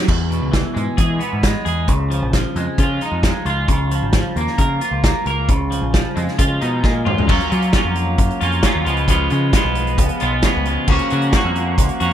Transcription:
0.08 clean electric guitar E2, picked electric bass E2, kick, crash
0.30 clean electric guitar B2, closed hi-hat
0.42 picked electric bass C#2
0.52 clean electric guitar E3, kick, snare, closed hi-hat
0.74 picked electric bass G#2, clean electric guitar G#3, closed hi-hat
0.97 picked electric bass E3, clean electric guitar G#4, kick, closed hi-hat
1.19 clean electric guitar B3, closed hi-hat
1.33 picked electric bass G#2
1.43 clean electric guitar G#3, kick, snare, closed hi-hat
1.65 picked electric bass E2, clean electric guitar G#4, closed hi-hat
1.88 picked electric bass C#2, clean electric guitar C#3, kick, closed hi-hat
2.10 clean electric guitar F3, closed hi-hat
2.22 picked electric bass A#1
2.33 clean electric guitar F3, kick, snare, closed hi-hat
2.56 picked electric bass F2, clean electric guitar G#3, closed hi-hat
2.78 picked electric bass C#3, clean electric guitar F4, kick, closed hi-hat
3.01 clean electric guitar D#4, closed hi-hat
3.12 picked electric bass F2
3.23 clean electric guitar G#3, kick, snare, closed hi-hat
3.45 picked electric bass C#2, clean electric guitar F4, closed hi-hat
3.68 picked electric bass C#2, clean electric guitar C#3, kick, closed hi-hat
3.91 clean electric guitar F3, closed hi-hat
4.02 picked electric bass G#1
4.13 clean electric guitar F3, kick, snare, closed hi-hat
4.36 picked electric bass D#2, clean electric guitar A#3, closed hi-hat
4.47 snare
4.58 picked electric bass C#3, clean electric guitar A#4, kick, closed hi-hat
4.81 clean electric guitar F4, closed hi-hat
4.91 picked electric bass C#2
5.04 clean electric guitar A#3, kick, snare, closed hi-hat
5.26 picked electric bass C#2, clean electric guitar A#4, closed hi-hat
5.49 picked electric bass C#2, clean electric guitar C#3, kick, closed hi-hat
5.71 clean electric guitar F3, closed hi-hat
5.81 picked electric bass A#1
5.94 clean electric guitar F3, kick, snare, closed hi-hat
6.16 picked electric bass F2, clean electric guitar G#3, closed hi-hat
6.28 snare
6.38 picked electric bass C#3, clean electric guitar F4, kick, closed hi-hat
6.61 picked electric bass B2, clean electric guitar D#4, closed hi-hat
6.83 picked electric bass A#2, clean electric guitar G#3, kick, snare
7.05 picked electric bass G#2, clean electric guitar F4, mid tom
7.18 floor tom
7.27 picked electric bass F#2, clean electric guitar F#3 A#3 C#4 F4, kick, crash
7.40 closed hi-hat
7.50 picked electric bass F#3, clean electric guitar A#3 C#4 F4, closed hi-hat
7.62 closed hi-hat
7.73 clean electric guitar F#3 A#3 C#4 F4, kick, snare, closed hi-hat
7.85 picked electric bass F2
7.95 closed hi-hat
8.18 picked electric bass F#2, kick, closed hi-hat
8.30 closed hi-hat
8.41 picked electric bass F2, clean electric guitar A#3 C#4 F4, closed hi-hat
8.52 closed hi-hat
8.62 clean electric guitar F#3 A#3 C#4 F4, kick, snare, closed hi-hat
8.75 picked electric bass D#2
8.85 picked electric bass C#2, clean electric guitar C#3 F3 G#3 B3 F4, closed hi-hat
8.97 closed hi-hat
9.08 clean electric guitar C#3 F3 G#3 B3 F4, kick, closed hi-hat
9.30 picked electric bass C#3, clean electric guitar G#3 B3 F4, closed hi-hat
9.53 clean electric guitar F3 G#3 B3 F4, kick, snare, closed hi-hat
9.65 picked electric bass B1
9.75 closed hi-hat
9.87 closed hi-hat
9.98 picked electric bass C#2, kick, closed hi-hat
10.09 closed hi-hat
10.20 picked electric bass B1, clean electric guitar G#3 B3 F4, closed hi-hat
10.42 clean electric guitar C#3 F3 G#3 B3 F4, kick, snare, closed hi-hat
10.56 picked electric bass C#2
10.65 clean electric guitar G#3 B3 F4, closed hi-hat
10.88 picked electric bass C#2, clean electric guitar C#3 F3 A#3 C#4 F#4, kick, crash
10.99 closed hi-hat
11.10 picked electric bass C#3, clean electric guitar A#3 C#4 F#4, closed hi-hat
11.22 closed hi-hat
11.33 clean electric guitar F3 A#3 C#4 F#4, kick, snare, closed hi-hat
11.45 picked electric bass F2
11.55 closed hi-hat
11.78 picked electric bass C#2, kick, closed hi-hat
11.89 closed hi-hat
12.00 picked electric bass F2, clean electric guitar A#3 C#4 F#4, closed hi-hat

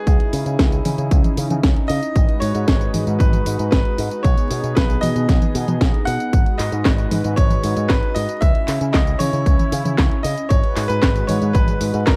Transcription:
Already playing: analog synth pad D#4, grand piano G#4
0.07 picked electric bass C#2, analog synth pad C#4 E4, kick, closed hi-hat, tambourine
0.20 closed hi-hat
0.33 picked electric bass C#3, open hi-hat, tambourine
0.46 picked electric bass C#3, closed hi-hat, tambourine
0.59 picked electric bass C#2, kick, snare, closed hi-hat, tambourine
0.72 closed hi-hat, tambourine
0.85 picked electric bass C#3, open hi-hat, high tom, tambourine
0.98 picked electric bass C#3, closed hi-hat, tambourine
1.11 picked electric bass C#2, kick, closed hi-hat, tambourine
1.24 closed hi-hat, high tom, tambourine
1.37 picked electric bass C#3, open hi-hat, tambourine
1.50 picked electric bass C#3, closed hi-hat, high tom, tambourine
1.63 picked electric bass C#2, kick, snare, closed hi-hat, tambourine
1.76 closed hi-hat
1.88 picked electric bass C#3, grand piano D#5, open hi-hat, tambourine
2.03 closed hi-hat, tambourine
2.16 picked electric bass G#1, analog synth pad G#3 F#4 B4, kick, closed hi-hat, tambourine
2.29 closed hi-hat
2.40 picked electric bass G#2, grand piano C#5, open hi-hat, tambourine
2.55 picked electric bass G#2, closed hi-hat, tambourine
2.68 picked electric bass G#1, kick, snare, closed hi-hat, tambourine
2.81 closed hi-hat, tambourine
2.94 picked electric bass G#2, open hi-hat, high tom, tambourine
3.07 picked electric bass G#2, closed hi-hat, tambourine
3.19 picked electric bass G#1, grand piano B4, kick, closed hi-hat, tambourine
3.33 closed hi-hat, high tom, tambourine
3.46 picked electric bass G#2, open hi-hat, tambourine
3.59 picked electric bass G#2, closed hi-hat, tambourine
3.71 picked electric bass G#1, grand piano B4, kick, snare, closed hi-hat, tambourine
3.85 closed hi-hat
3.98 picked electric bass G#2, open hi-hat, tambourine
4.11 closed hi-hat, tambourine
4.23 picked electric bass B1, analog synth pad B3 G#4, grand piano C#5, kick, closed hi-hat, tambourine
4.38 closed hi-hat, tambourine
4.51 picked electric bass B2, open hi-hat, tambourine
4.64 picked electric bass B2, closed hi-hat, tambourine
4.75 picked electric bass B1, grand piano B4, kick, snare, closed hi-hat, tambourine
4.90 closed hi-hat, tambourine
5.01 picked electric bass B2, grand piano D#5, open hi-hat, high tom, tambourine
5.16 picked electric bass B2, closed hi-hat, tambourine
5.29 picked electric bass B1, kick, snare, closed hi-hat, tambourine
5.42 closed hi-hat, high tom, tambourine
5.55 picked electric bass B2, open hi-hat, tambourine
5.68 picked electric bass B2, closed hi-hat, high tom, tambourine
5.81 picked electric bass B1, kick, snare, closed hi-hat, tambourine
5.94 closed hi-hat
6.05 picked electric bass B2, grand piano F#5, open hi-hat, tambourine
6.20 closed hi-hat, tambourine
6.33 picked electric bass G#1, analog synth pad G#3 F#4 B4, kick, closed hi-hat, tambourine
6.46 closed hi-hat
6.58 picked electric bass G#2, grand piano D#5, clap, open hi-hat, tambourine
6.72 picked electric bass G#2, closed hi-hat, tambourine
6.85 picked electric bass G#1, kick, snare, clap, closed hi-hat, tambourine
6.98 closed hi-hat, tambourine
7.11 picked electric bass G#2, open hi-hat, high tom, tambourine
7.24 picked electric bass G#2, closed hi-hat, tambourine
7.36 picked electric bass G#1, grand piano C#5, kick, closed hi-hat, tambourine
7.50 closed hi-hat, high tom, tambourine
7.64 picked electric bass G#2, open hi-hat, tambourine
7.77 picked electric bass G#2, closed hi-hat, tambourine
7.88 picked electric bass G#1, grand piano B4, kick, snare, clap, closed hi-hat, tambourine
8.03 closed hi-hat
8.15 picked electric bass G#2, grand piano D#5, open hi-hat, tambourine
8.29 closed hi-hat, tambourine
8.41 picked electric bass C#2, analog synth pad C#4 E4, grand piano E5, kick, closed hi-hat, tambourine
8.55 closed hi-hat
8.68 picked electric bass C#3, clap, open hi-hat, tambourine
8.81 picked electric bass C#3, closed hi-hat, tambourine
8.93 picked electric bass C#2, grand piano D#5, kick, snare, clap, closed hi-hat, tambourine
9.07 closed hi-hat, tambourine
9.19 picked electric bass C#3, grand piano C#5, open hi-hat, high tom, tambourine
9.33 picked electric bass C#3, closed hi-hat, tambourine
9.46 picked electric bass C#2, kick, closed hi-hat, tambourine
9.59 closed hi-hat, high tom, tambourine
9.72 picked electric bass C#3, open hi-hat, tambourine
9.85 picked electric bass C#3, closed hi-hat, high tom, tambourine
9.98 picked electric bass C#2, kick, snare, clap, closed hi-hat, tambourine
10.11 closed hi-hat
10.23 picked electric bass C#3, grand piano D#5, open hi-hat, tambourine
10.37 closed hi-hat, tambourine
10.49 picked electric bass G#1, analog synth pad G#3 F#4 B4, grand piano C#5, kick, closed hi-hat, tambourine
10.63 closed hi-hat
10.76 picked electric bass G#2, clap, open hi-hat, tambourine
10.88 picked electric bass G#2, grand piano B4, closed hi-hat, tambourine
11.03 picked electric bass G#1, kick, snare, clap, closed hi-hat, tambourine
11.16 closed hi-hat, tambourine
11.27 picked electric bass G#2, grand piano C#5, open hi-hat, high tom, tambourine
11.42 picked electric bass G#2, closed hi-hat, tambourine
11.53 picked electric bass G#1, grand piano B4, kick, closed hi-hat, tambourine
11.68 closed hi-hat, high tom, tambourine
11.81 picked electric bass G#2, open hi-hat, tambourine
11.94 picked electric bass G#2, closed hi-hat, tambourine
12.05 picked electric bass G#1, grand piano A#4, kick, snare, clap, closed hi-hat, tambourine

